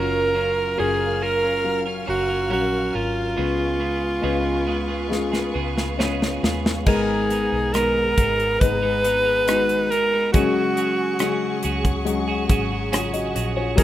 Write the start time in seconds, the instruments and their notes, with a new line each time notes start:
Already playing: fingered electric bass F#1, clean electric guitar F#3 C#4 F4 A#4, grand piano F#3 C#4 F4 A#4, alto saxophone A#4, string section A#4 F5 F6
0.35 clean electric guitar F#3 C#4 F4 A#4
0.77 fingered electric bass F#1, grand piano F#3 C#4 F4 A#4, clean electric guitar F#3 C#4 F4 A#4, alto saxophone G#4
1.21 clean electric guitar F#3 C#4 F4 A#4, alto saxophone A#4
1.42 clean electric guitar C#4 F4 A#4
1.64 grand piano F#3 C#4 A#4 F5
1.86 clean electric guitar C#4 F4 A#4
2.06 fingered electric bass F#1, clean electric guitar F#3 C#4 F4 A#4, alto saxophone F#4
2.29 clean electric guitar C#4 F4 A#4
2.50 fingered electric bass A#1, grand piano F#3 C#4 A#4 F5, clean electric guitar F#3 C#4 A#4, alto saxophone F#4
2.93 fingered electric bass G#1, clean electric guitar F#3 C#4 F4 A#4, alto saxophone F4
3.36 fingered electric bass C#2, clean electric guitar C#3 G#3 B3 F4 G#4, grand piano C#3 G#3 C#4 F4 B4, string section B4 F5 C#6
3.79 clean electric guitar G#3 B3 F4 G#4
4.22 fingered electric bass C#2, clean electric guitar C#3 G#3 B3 F4 G#4, grand piano G#3 C#4 F4 B4
4.67 clean electric guitar G#3 B3 F4 G#4
4.88 clean electric guitar B3 F4 G#4
5.08 grand piano G#3 C#4 F4 G#4, snare
5.32 clean electric guitar B3 F4 G#4, snare
5.54 fingered electric bass C#2, clean electric guitar G#3 B3 F4 G#4
5.76 clean electric guitar B3 F4 G#4, snare
5.97 clean electric guitar C#3 G#3 B3 F4 G#4, grand piano G#3 C#4 F4 C#5, snare
6.22 snare
6.43 fingered electric bass D#2, clean electric guitar G#3 B3 F4 G#4, snare
6.66 snare
6.86 fingered electric bass G#1, grand piano G#2 G#3 B3 D#4 A#4, clean electric guitar G#2 D#3 G#3 B3 D#4 A#4, string section B3 G#4 A#5, alto saxophone G#4, kick, crash
7.30 clean electric guitar G#3 B3 D#4 A#4, closed hi-hat
7.52 fingered electric bass B1
7.73 clean electric guitar G#2 D#3 G#3 B3 D#4 A#4, grand piano G#3 B3 D#4 A#4, alto saxophone A#4, cross-stick, closed hi-hat
8.17 fingered electric bass G#1, clean electric guitar G#3 B3 D#4 A#4, kick, closed hi-hat
8.40 closed hi-hat
8.60 fingered electric bass G#1, grand piano G#3 B3 D#4 B4, alto saxophone B4, kick, closed hi-hat
8.82 clean electric guitar G#3 B3 D#4 A#4
9.04 clean electric guitar G#3 B3 D#4 A#4, closed hi-hat
9.26 clean electric guitar G#3 B3 D#4 A#4
9.47 clean electric guitar G#2 D#3 G#3 B3 D#4, grand piano G#3 B3 D#4 F#4, cross-stick, closed hi-hat
9.69 closed hi-hat
9.90 clean electric guitar G#3 B3 D#4 A#4, alto saxophone A#4, closed hi-hat
10.12 clean electric guitar G#3 B3 D#4 A#4
10.33 fingered electric bass C#2, clean electric guitar C#3 F#3 C#4 F#4 G#4, grand piano C#3 F#3 G#3 C#4 G#4, alto saxophone F#4, string section G#4 F#5 C#6, kick, closed hi-hat
10.77 clean electric guitar F#3 C#4 F#4 G#4, closed hi-hat
11.19 clean electric guitar C#3 F#3 C#4 F#4 G#4, grand piano F#3 G#3 C#4 G#4, cross-stick, closed hi-hat
11.63 fingered electric bass C#2, clean electric guitar F#3 C#4 F#4 G#4, closed hi-hat
11.85 kick, closed hi-hat
12.05 grand piano F#3 G#3 C#4 F#4, closed hi-hat
12.28 clean electric guitar C#4 F#4 G#4
12.49 fingered electric bass G#1, clean electric guitar F#3 C#4 F#4 G#4, kick, closed hi-hat
12.71 clean electric guitar C#4 F#4 G#4
12.92 clean electric guitar C#3 F#3 C#4 F#4 G#4, grand piano F4 C#5, cross-stick, closed hi-hat
13.13 grand piano F#4 D#5, closed hi-hat
13.35 fingered electric bass A#1, clean electric guitar F#3 C#4 F#4 G#4, closed hi-hat
13.56 clean electric guitar C#4 F#4 G#4, grand piano F4 C#5
13.76 fingered electric bass D#2, clean electric guitar D#3 F#3 D#4 F#4 A#4, grand piano D#3 F#3 A#3 D#4 A#4, string section F#4 A#4 D#6, alto saxophone G#4, kick, closed hi-hat